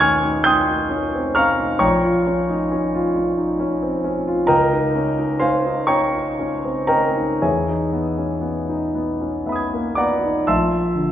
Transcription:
Already playing: D#2 C#4 D#4 G5 C6 D#6 G6
0.00 C#4 G#5 C#6 F6 G#6
0.25 D#4
0.44 C#4 G5 C6 D#6 G6
0.68 D#4
0.89 C#4
1.15 C4
1.35 C#4 F5 A#5 C#6 F6
1.60 D#4
1.79 A#1 C#5 G5 A#5 C#6
2.03 F4
2.27 C#4
2.49 D#4
2.72 C#4
2.95 F4
3.16 C#4
3.38 D#4
3.60 C#4
3.83 C4
4.04 C#4
4.27 F4
4.47 C#2 A#4 D#5 G5 A#5
4.72 D#4
4.95 C#4
5.19 D#4
5.40 C#4 C5 F5 G#5 C6
5.66 D#4
5.87 C#4 C#5 G5 A#5 C#6
6.14 D#4
6.39 C#4
6.65 C4
6.87 C#4 A#4 D#5 G5 A#5
7.17 D#4
7.42 E2 G#4 C#5 E5 G#5
7.68 D#4
7.93 B3
8.18 C#4
8.41 B3
8.69 D#4
8.95 B3
9.21 C#4
9.46 B3 E5 B5
9.52 D#6 G#6
9.73 A#3
9.95 B3 D5 F#5 A#5 D6
10.25 D#4
10.47 A#1 E5 A5 C6 E6
10.95 D3

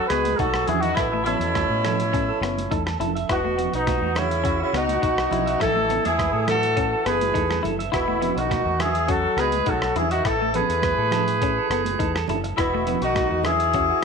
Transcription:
Already playing: F#4
0.07 C#2 G#3 F#4 G#4 B4, cross-stick, closed hi-hat
0.12 B3
0.25 closed hi-hat, high conga
0.36 B1 D#4 F#4 A4, kick, closed hi-hat
0.40 F#3
0.54 F#4, cross-stick
0.66 E2 E3 E4 F#4 G#4, closed hi-hat, low conga
0.80 D#3 D#4 F#4 E5, closed hi-hat
0.95 A1 B2 B3 E4 A4, kick, cross-stick, closed hi-hat
1.12 A3 A4
1.24 B2 B3 C#4 E4 A4, closed hi-hat, low conga
1.39 E2 A4, closed hi-hat
1.55 A4, kick, cross-stick, closed hi-hat, high conga
1.69 A2
1.85 A4, cross-stick, closed hi-hat, low conga
2.00 closed hi-hat
2.13 C#4 A4, kick, closed hi-hat
2.28 A4
2.41 F#1 B3, cross-stick, closed hi-hat
2.58 closed hi-hat, high conga
2.71 E2 D#4 A4, kick, closed hi-hat
2.86 A4, cross-stick
2.99 F1 E4 A4, closed hi-hat, low conga
3.15 E5, closed hi-hat
3.29 E1 B2 B3 E4 F#4, kick, cross-stick, closed hi-hat
3.44 A3 F#4
3.58 B3 F#4, closed hi-hat, low conga
3.73 B1 B2 B3 D#4 F#4, closed hi-hat
3.87 F#4, kick, cross-stick, closed hi-hat, high conga
4.01 E2 F#4
4.15 C#3 C#4 E4 F#4, cross-stick, closed hi-hat, low conga
4.31 closed hi-hat
4.44 C#4 F#4, kick, closed hi-hat
4.60 C#3 C#4 E4 F#4
4.73 C#2 B2 B3 D#4 F#4, cross-stick, closed hi-hat
4.88 closed hi-hat, high conga
5.02 B1 D#4 F#4, kick, closed hi-hat
5.17 F#4, cross-stick
5.31 B1 E4, closed hi-hat, low conga
5.46 E5, closed hi-hat
5.60 A1 E3 E4 A4, kick, cross-stick, closed hi-hat, low conga
5.75 A3, muted clean electric guitar stroke
5.89 B3 A4, closed hi-hat, low conga
6.04 E2 E3 E4 G#4 A4, closed hi-hat, high conga
6.18 B4, kick, cross-stick, closed hi-hat, high conga
6.33 A2 A4
6.47 E3 F#4 A4, cross-stick, closed hi-hat, low conga
6.63 closed hi-hat
6.76 C#4 A4, kick, closed hi-hat
6.91 A4
7.05 F#1 E3 B3 G#4 A4 B4, cross-stick, closed hi-hat
7.21 closed hi-hat, high conga
7.34 E2 D#4 A4, kick, closed hi-hat
7.49 A4, cross-stick, high conga
7.63 F#1 E4 A4, closed hi-hat, low conga
7.79 E5, closed hi-hat
7.92 E1 B3 E4 F#4, kick, cross-stick, closed hi-hat
7.96 B2
8.08 A3 F#4
8.21 B3 F#4, closed hi-hat, low conga
8.36 B1 D#3 D#4 F#4, closed hi-hat
8.50 F#4, kick, cross-stick, closed hi-hat, high conga
8.65 E2 F#4
8.78 E4 F#4 G#4, cross-stick, closed hi-hat, low conga
8.82 E3
8.95 closed hi-hat
9.08 C#4 F#4 A4, kick, closed hi-hat
9.13 F#3
9.36 C#2 G#3 B3 F#4 G#4 B4, cross-stick, closed hi-hat
9.52 closed hi-hat, high conga
9.66 B1 F#3 D#4 F#4 A4, kick, closed hi-hat
9.82 F#4, cross-stick
9.95 E2 E3 E4 G#4, closed hi-hat, low conga
10.11 D#3 D#4 F#4 E5, closed hi-hat
10.25 A1 E3 E4 A4, kick, cross-stick, closed hi-hat
10.40 A3 A4
10.54 E3 B3 G#4 A4 B4, closed hi-hat, low conga
10.69 E2 A4, closed hi-hat
10.82 B4, kick, cross-stick, closed hi-hat, high conga
10.98 A2 A4
11.11 A4, cross-stick, closed hi-hat, low conga
11.28 closed hi-hat
11.41 C#4 A4, kick, closed hi-hat
11.57 A4
11.70 F#1 B3 A4, cross-stick, closed hi-hat
11.85 closed hi-hat, high conga
11.99 E2 D#4 A4, kick, closed hi-hat
12.15 A4, cross-stick
12.28 F#1 E4 A4, closed hi-hat, low conga
12.44 muted clean electric guitar stroke, closed hi-hat
12.57 E1 B2 B3 E4 F#4, kick, cross-stick, closed hi-hat
12.73 A3 F#4
12.87 B3 F#4, closed hi-hat, low conga
13.01 B1 D#3 D#4 F#4, closed hi-hat
13.15 F#4, kick, cross-stick, closed hi-hat, high conga
13.31 E2 F#4
13.44 E3 E4 G#4, cross-stick, closed hi-hat, low conga
13.60 closed hi-hat
13.73 C#4 F#4, kick, closed hi-hat
13.90 F#4

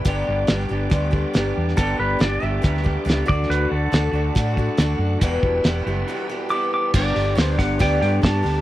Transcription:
Already playing: B4 G5
0.05 G1 G2 D3 G3 B3 D4 G4 D6, kick, closed hi-hat
0.27 G1 G3 B3 D4 G4
0.47 G1 G3 B3 D4 G4, snare, closed hi-hat
0.60 snare
0.70 G1 G3 B3 D4 G4
0.90 D2 G2 D3 G3 B3 D4 G4, kick, closed hi-hat
1.12 G3 B3 D4 G4, kick
1.33 G1 G3 B3 D4 G4, snare, closed hi-hat
1.57 E2
1.68 snare
1.77 G1 G2 D3 G3 B3 D4 G4 A4, kick, closed hi-hat
1.98 G1 G3 B3 D4 G4 B4
2.20 G1 G3 B3 D4 G4 D5, snare, closed hi-hat
2.42 G1 G3 B3 D4 G4 E5
2.62 D2 G2 D3 G3 B3 D4 G4, kick, closed hi-hat
2.77 snare
2.83 G3 B3 D4 G4, kick
3.04 C#2 G3 B3 D4 G4
3.09 snare, closed hi-hat
3.27 D2 D3 A3 D4 F#4 A4 D5 F#5, kick
3.43 snare
3.48 D2 D3 A3 D4 F#4 B4, closed hi-hat
3.70 D2 A3 D4 F#4 A4
3.91 D2 D3 A3 D4 F#4, snare, closed hi-hat
4.11 D2 A3 D4 F#4
4.35 A2 D3 A3 D4 F#4, kick, closed hi-hat
4.54 A3 D4 F#4, kick
4.58 F#4
4.77 D2 D3 A3 D4 F#4, snare, closed hi-hat
4.99 F#2
5.19 E1 E2 B2 E3 G3 B3 E4 B4 G5 E6, kick, closed hi-hat
5.23 G4
5.41 E1 E3 G3 B3 E4, kick
5.64 E1 E3 G3 B3 E4 G4, snare, closed hi-hat
5.83 F#1 E3 G3 B3 E4 G4
6.05 E2 B2 E3 G3 B3 E4
6.10 G4
6.27 E3 G3 B3 E4 G4
6.50 E3 G3 B3 E4 G4 D6
6.74 D6
6.94 G1 G2 D3 G3 B3 D4 G4 B4 D5 D6, kick, crash
7.14 G1 G3 B3 D4 G4, open hi-hat
7.37 D2 G2 D3 G3 B3 D4 G4 C5, snare, open hi-hat
7.57 G1 G3 B3 D4 G4 F#5, kick, open hi-hat
7.79 D2 G2 D3 G3 B3 D4 G4 G5, kick, open hi-hat
8.00 G2 D3 G3 B3 D4 G4 G5, open hi-hat
8.23 G2 G3 B3 D4 G4 A5, kick, snare, open hi-hat
8.43 D2 G3 B3 D4 G4, open hi-hat

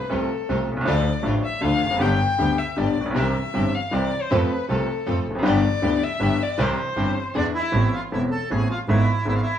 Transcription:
Already playing: B4
0.09 C2 C3 F3 A3 C4 F4 A4
0.48 C2 C3 F3 A3 C4 F4 A4
0.69 B1 C2
0.77 C2
0.81 C#2 F3
0.85 D2 D3 A3 D4 F4 A4 D5
1.22 A1 A2 F3 A3 D4 F4 A4
1.44 E5
1.61 D2 D3 F3 A3 D4 F4 A4 F5
1.83 F1 E2
1.91 F2
1.96 G1 F#2 G2 D3 G3 B3 G4
2.01 G1 B3 D4 G4 G5
2.38 D2 D3 G3 B3 D4 G4
2.58 E5
2.76 G1 G2 D3 G3 B3 D4 G4 D5
2.98 A1 A#1
3.06 A#1
3.11 B1 C2 C3 E3 G3 C4 G4
3.16 C2 C4 E4 G4 E5
3.54 G1 G2 E3 G3 C4 E4 G4
3.75 F5
3.91 C2 C3 E3 G3 C4 E4 G4 D5
4.22 C5
4.30 F2 F3 A3 C4 F4 A4 B4
4.68 C2 C3 F3 A3 C4 F4 A4
5.06 F2 F3 A3 C4 F4 A4
5.27 F1 E2
5.35 F2 F#2
5.42 G1 G2 E3 B3 D4 E4 G4
5.47 D5
5.82 D2 D3 E3 B3 D4 E4 G4
6.04 E5
6.20 G1 G2 E3 B3 D4 E4 G4
6.43 D5
6.58 C2 C3 E3 G3 C4 E4 G4
6.62 C5
6.96 G1 G2 E3 G3 C4 E4 G4
7.34 E2 E3 B3 D4 E4 G#4
7.39 D5
7.54 E4 E5
7.59 E4
7.72 A1 A2 E3 B3 C4 A4
7.92 F4 F5
7.97 F4
8.12 E1 E2 E3 B3 C4 E4 A4 E5
8.31 A4 A5
8.50 A1 A2 E3 B3 C4 G#4 A4 G#5
8.70 F4 F5
8.88 G#1 G#2 E3 G#3 B3 E4 G#4 E5
9.25 G#1 G#2 E3 G#3 B3 E4 G#4 E5
9.35 F4 F5
9.42 E4 E5

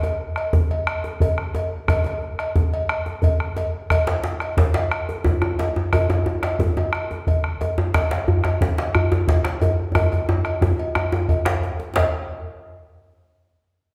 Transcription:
0.02 bombo rim, cowbell, djembe slap, djembe tone
0.36 bombo rim, cowbell
0.53 bombo low, djembe slap, djembe tone, djembe bass
0.71 cowbell
0.87 bombo rim, cowbell
1.04 djembe slap, djembe tone
1.20 bombo low, cowbell, djembe bass
1.38 bombo rim
1.55 cowbell, djembe slap, djembe tone
1.88 bombo rim, bombo low, cowbell, djembe bass
2.04 cowbell, djembe slap, djembe tone
2.21 djembe slap
2.39 bombo rim, cowbell
2.56 bombo low, djembe slap, djembe tone
2.74 cowbell
2.89 bombo rim, cowbell
3.06 djembe slap, djembe tone
3.22 bombo low, cowbell, djembe bass
3.40 bombo rim
3.57 cowbell, djembe slap, djembe tone
3.90 bombo rim, bombo low, cowbell, djembe bass
4.07 bombo rim, cowbell, djembe slap, djembe tone
4.24 djembe slap
4.40 bombo rim, cowbell
4.57 bombo low, djembe slap, djembe tone, djembe bass
4.74 cowbell, djembe slap
4.92 bombo rim, cowbell
5.09 djembe slap, djembe tone
5.24 bombo low, djembe slap, djembe tone, djembe bass
5.42 bombo rim, djembe tone
5.59 cowbell, djembe slap, djembe tone
5.76 djembe tone
5.93 bombo rim, bombo low, cowbell, djembe tone, djembe bass
6.10 bombo rim, cowbell, djembe slap, djembe tone
6.26 djembe tone
6.43 bombo rim, cowbell, djembe slap
6.59 bombo low, djembe slap, djembe tone, djembe bass
6.77 cowbell, djembe tone
6.93 bombo rim, cowbell
7.11 djembe slap, djembe tone
7.27 bombo low, cowbell, djembe slap, djembe bass
7.44 bombo rim
7.61 cowbell, djembe slap, djembe tone
7.78 djembe tone
7.94 bombo rim, bombo low, cowbell, djembe slap, djembe bass
8.11 bombo rim, cowbell, djembe slap, djembe tone
8.28 djembe bass
8.44 bombo rim, cowbell, djembe tone
8.61 bombo low, djembe slap, djembe tone, djembe bass
8.78 cowbell, djembe slap
8.95 bombo rim, cowbell, djembe bass
9.12 djembe slap, djembe tone
9.28 bombo low, cowbell, djembe slap, djembe bass
9.45 bombo rim, djembe slap
9.61 cowbell, djembe slap, djembe tone, djembe bass
9.95 bombo rim, bombo low, cowbell, djembe tone, djembe bass
10.12 bombo rim, cowbell, djembe slap, djembe tone
10.29 djembe tone
10.45 bombo rim, cowbell, djembe slap
10.61 bombo rim, bombo low, djembe slap, djembe tone, djembe bass
10.79 cowbell
10.95 bombo rim, cowbell, djembe tone
11.12 bombo rim, djembe tone, djembe bass
11.28 bombo low, cowbell, djembe bass
11.45 bombo rim, djembe slap, djembe bass
11.64 djembe slap
11.80 djembe slap
11.96 bombo low, cowbell, djembe slap, djembe bass

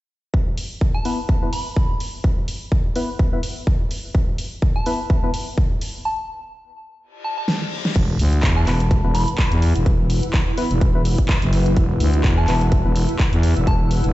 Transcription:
0.34 kick
0.58 open hi-hat
0.81 kick
0.94 A5
1.05 B3 E4 B4, open hi-hat
1.29 kick
1.42 B3 E4 B4
1.53 B5, open hi-hat
1.76 kick
2.00 open hi-hat
2.24 kick
2.48 open hi-hat
2.72 kick
2.96 B3 E4 B4, open hi-hat
3.19 kick
3.33 B3 E4 B4
3.43 open hi-hat
3.67 kick
3.91 open hi-hat
4.15 kick
4.38 open hi-hat
4.62 kick
4.76 A5
4.86 B3 E4 B4, open hi-hat
5.10 kick
5.23 B3 E4 B4
5.34 open hi-hat
5.58 kick
5.81 open hi-hat
6.05 A5
7.00 reverse cymbal
7.24 A5
7.38 A5
7.48 snare
7.85 snare
7.96 E1 E4, kick, closed hi-hat, crash
8.15 B4, open hi-hat
8.20 D2 F#5
8.33 closed hi-hat
8.43 E2, kick, clap, closed hi-hat
8.57 A5
8.67 E1 B3 E4 B4, clap, open hi-hat
8.76 E6
8.80 closed hi-hat
8.91 kick, closed hi-hat
9.04 E1 B3 E4 B4
9.15 B5, open hi-hat
9.28 closed hi-hat
9.38 kick, clap, closed hi-hat
9.52 E2, closed hi-hat
9.62 open hi-hat
9.76 E1, closed hi-hat
9.86 kick, closed hi-hat
10.10 open hi-hat
10.23 closed hi-hat
10.34 kick, clap, closed hi-hat
10.58 B3 E4 B4, open hi-hat
10.71 E1, closed hi-hat
10.81 kick, closed hi-hat
10.95 B3 E4 B4
11.05 open hi-hat
11.18 kick, closed hi-hat
11.29 kick, clap, closed hi-hat
11.42 F#1, closed hi-hat
11.53 open hi-hat
11.66 closed hi-hat
11.77 E1, kick, closed hi-hat
12.00 D2, open hi-hat
12.14 closed hi-hat
12.24 E2, kick, clap, closed hi-hat
12.38 A5
12.48 E1 B3 E4 B4, clap, open hi-hat
12.61 closed hi-hat
12.72 kick, closed hi-hat
12.85 E1 B3 E4 B4
12.96 open hi-hat
13.09 closed hi-hat
13.19 kick, clap, closed hi-hat
13.33 E2, closed hi-hat
13.43 open hi-hat
13.57 E1, closed hi-hat
13.67 A5, kick, closed hi-hat
13.91 open hi-hat
14.04 E1, closed hi-hat

